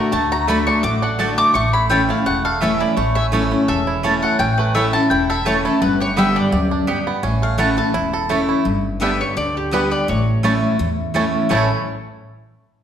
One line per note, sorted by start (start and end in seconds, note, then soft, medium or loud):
0.00 0.11 D3 medium
0.00 0.11 A3 medium
0.00 0.13 A3 medium
0.00 0.11 D4 medium
0.00 0.12 D4 medium
0.00 0.12 F#4 medium
0.00 0.31 F#4 medium
0.00 1.01 A4 medium
0.00 0.12 A#4 medium
0.12 0.68 D2 medium
0.12 0.47 D3 medium
0.12 0.48 A3 medium
0.12 0.31 A5 medium
0.32 0.81 F#4 medium
0.32 0.48 A#5 loud
0.47 0.82 D3 medium
0.47 0.58 A3 loud
0.47 1.38 A3 medium
0.47 0.83 A3 medium
0.47 0.83 D4 loud
0.47 0.58 F#4 loud
0.47 0.83 F#4 loud
0.47 0.58 D5 loud
0.47 0.58 A5 medium
0.47 0.66 B5 loud
0.67 1.01 D4 medium
0.67 0.83 C#6 loud
0.83 1.39 A1 medium
0.83 1.52 A2 medium
0.83 1.18 F#4 medium
0.83 1.02 D6 loud
1.02 1.51 D4 medium
1.02 1.19 F#5 medium
1.19 1.53 D3 medium
1.19 1.29 A3 medium
1.19 1.53 A3 medium
1.19 1.54 D4 medium
1.19 1.55 F#4 medium
1.19 1.29 F#4 medium
1.19 1.54 F#4 medium
1.19 1.29 D5 loud
1.19 1.37 A5 medium
1.19 1.29 A5 loud
1.38 1.55 A3 medium
1.38 1.54 D6 loud
1.54 2.10 A1 medium
1.54 2.23 A2 medium
1.54 1.91 A3 medium
1.54 1.73 C#6 loud
1.73 2.10 E4 medium
1.73 1.90 B5 loud
1.90 2.08 E3 medium
1.90 2.00 A3 medium
1.90 2.09 A3 medium
1.90 2.26 A3 medium
1.90 2.09 C#4 loud
1.90 2.00 E4 medium
1.90 2.08 E4 medium
1.90 2.00 C#5 medium
1.90 2.09 G5 medium
1.90 2.01 A5 medium
2.09 2.26 C#4 soft
2.09 2.25 E4 medium
2.09 2.80 E4 medium
2.09 2.26 F5 medium
2.26 2.82 E1 medium
2.26 2.94 E2 medium
2.26 2.97 A3 medium
2.26 2.44 F#5 medium
2.45 3.68 A4 medium
2.45 2.61 F5 medium
2.61 2.95 E3 medium
2.61 2.71 A3 medium
2.61 2.96 A3 medium
2.61 3.16 C#4 medium
2.61 2.96 C#4 medium
2.61 2.71 E4 loud
2.61 2.96 E4 loud
2.61 2.71 C#5 loud
2.61 2.80 E5 medium
2.61 2.71 A5 loud
2.80 3.87 E4 medium
2.80 2.96 D5 medium
2.97 3.53 A1 loud
2.97 3.65 A2 medium
2.97 3.33 A3 medium
2.97 3.15 C#5 medium
3.15 3.51 C#4 medium
3.15 3.26 E5 loud
3.32 3.50 E3 medium
3.32 3.42 A3 medium
3.32 3.51 A3 medium
3.32 3.84 A3 medium
3.32 3.51 C#4 medium
3.32 3.42 E4 medium
3.32 3.50 E4 medium
3.32 3.42 C#5 loud
3.32 3.43 A5 medium
3.51 4.01 C#4 medium
3.51 3.68 C#4 soft
3.51 3.67 E4 medium
3.68 4.24 E1 medium
3.68 4.36 E2 medium
3.68 4.19 A4 medium
3.68 4.19 E5 loud
3.87 4.36 E4 medium
4.03 4.37 E3 medium
4.03 4.13 A3 medium
4.03 4.38 A3 medium
4.03 4.39 C#4 medium
4.03 4.38 C#4 medium
4.03 4.13 E4 medium
4.03 4.38 E4 medium
4.03 4.14 C#5 medium
4.03 4.14 A5 loud
4.22 4.72 A4 medium
4.22 4.39 F#5 medium
4.39 4.95 A1 loud
4.39 5.07 A2 medium
4.39 4.90 C#4 medium
4.39 4.58 G5 loud
4.58 5.08 A3 medium
4.58 4.74 B4 medium
4.75 4.93 E3 medium
4.75 4.84 A3 medium
4.75 4.93 A3 medium
4.75 4.94 C#4 medium
4.75 4.84 E4 loud
4.75 5.10 E4 medium
4.75 4.93 E4 medium
4.75 4.85 C#5 medium
4.75 4.93 E5 loud
4.75 4.85 A5 medium
4.93 5.11 C#4 medium
4.93 5.10 E4 medium
4.93 5.29 A4 medium
4.93 5.10 A5 loud
5.10 5.66 E1 medium
5.10 5.78 E2 medium
5.10 5.62 E4 medium
5.10 5.29 G5 medium
5.30 5.78 A4 medium
5.30 5.46 E5 loud
5.45 5.64 E3 medium
5.45 5.55 A3 medium
5.45 5.81 A3 medium
5.45 5.64 A3 medium
5.45 5.65 C#4 medium
5.45 5.56 E4 medium
5.45 5.64 E4 medium
5.45 5.64 C#5 medium
5.45 5.56 C#5 medium
5.45 5.56 A5 loud
5.65 5.82 C#4 medium
5.65 5.81 E4 medium
5.65 5.82 E4 medium
5.65 5.81 A4 medium
5.82 6.37 G1 medium
5.82 6.49 G2 medium
5.82 6.16 B3 medium
5.82 6.00 B4 medium
6.00 6.49 G4 medium
6.00 6.17 C#5 loud
6.16 6.51 D3 medium
6.16 6.51 G3 loud
6.16 6.26 B3 medium
6.16 6.68 B3 medium
6.16 6.52 B3 loud
6.16 6.26 G4 medium
6.16 6.52 G4 loud
6.16 6.27 D5 medium
6.16 6.36 E5 loud
6.16 6.27 G5 loud
6.36 6.70 D4 medium
6.36 6.84 D5 medium
6.52 7.08 D2 medium
6.52 6.86 F#2 medium
6.52 6.87 G4 medium
6.71 7.20 D4 medium
6.87 7.21 G2 medium
6.87 6.97 B3 medium
6.87 6.98 G4 medium
6.87 7.24 G4 medium
6.87 6.98 D5 loud
6.87 6.98 G5 medium
7.07 7.24 B3 medium
7.23 7.78 A1 medium
7.23 7.91 A2 medium
7.23 7.74 C#4 medium
7.42 7.91 A3 medium
7.42 7.58 F5 medium
7.58 7.77 E3 medium
7.58 7.68 A3 medium
7.58 7.77 A3 medium
7.58 7.77 C#4 medium
7.58 7.69 E4 medium
7.58 7.93 E4 medium
7.58 7.76 E4 loud
7.58 7.69 C#5 loud
7.58 7.77 F#5 medium
7.58 7.69 A5 medium
7.77 7.94 C#4 soft
7.77 7.93 E4 medium
7.77 8.12 A4 medium
7.77 8.53 A5 medium
7.94 8.50 E1 medium
7.94 8.62 E2 medium
7.94 8.45 E4 medium
8.13 8.62 A4 medium
8.29 8.64 E3 medium
8.29 8.39 A3 medium
8.29 8.66 A3 medium
8.29 8.64 A3 medium
8.29 8.64 C#4 medium
8.29 8.40 E4 medium
8.29 8.65 E4 medium
8.29 8.40 C#5 medium
8.29 8.40 A5 medium
8.49 8.66 E4 medium
8.65 9.21 G1 medium
8.65 9.33 G2 medium
9.00 9.34 D3 medium
9.00 9.35 G3 medium
9.00 9.11 B3 medium
9.00 9.35 B3 loud
9.00 9.10 B3 medium
9.00 9.10 D4 medium
9.00 9.11 G4 medium
9.00 9.35 G4 loud
9.00 9.10 G4 medium
9.00 9.11 D5 medium
9.00 9.20 E5 medium
9.00 9.11 G5 loud
9.21 9.37 C#5 medium
9.37 9.92 D2 medium
9.37 9.70 D3 medium
9.37 9.55 D5 medium
9.57 9.72 G4 medium
9.71 10.06 D3 medium
9.71 10.06 G3 medium
9.71 9.82 B3 medium
9.71 10.06 B3 medium
9.71 9.81 B3 medium
9.71 9.81 D4 medium
9.71 9.82 G4 loud
9.71 10.07 G4 loud
9.71 9.82 G4 medium
9.71 9.91 B4 medium
9.71 9.82 D5 medium
9.71 9.83 G5 medium
9.91 10.07 D5 loud
10.08 10.64 A1 loud
10.08 10.76 A2 medium
10.08 11.11 C#5 medium
10.43 10.77 E3 medium
10.43 10.53 A3 medium
10.43 10.78 A3 loud
10.43 10.52 A3 medium
10.43 10.78 C#4 medium
10.43 10.52 C#4 medium
10.43 10.53 E4 medium
10.43 10.78 E4 loud
10.43 10.53 E4 medium
10.43 10.53 C#5 medium
10.43 10.53 A5 medium
10.79 11.47 E2 medium
10.79 11.35 E2 medium
11.14 11.48 E3 medium
11.14 11.24 A3 medium
11.14 11.48 A3 medium
11.14 11.24 A3 medium
11.14 11.49 C#4 medium
11.14 11.24 C#4 medium
11.14 11.24 E4 medium
11.14 11.49 E4 loud
11.14 11.24 E4 medium
11.14 11.24 C#5 loud
11.14 11.25 A5 loud
11.49 11.68 A1 medium
11.49 11.65 A2 medium
11.49 11.65 E3 medium
11.49 11.65 A3 medium
11.49 11.68 A3 medium
11.49 11.66 C#4 medium
11.49 11.69 C#4 medium
11.49 11.65 E4 medium
11.49 11.66 E4 medium
11.49 11.66 C#5 medium
11.49 11.68 C#5 medium
11.49 11.66 A5 medium
11.55 11.70 E4 medium
11.55 11.71 A4 medium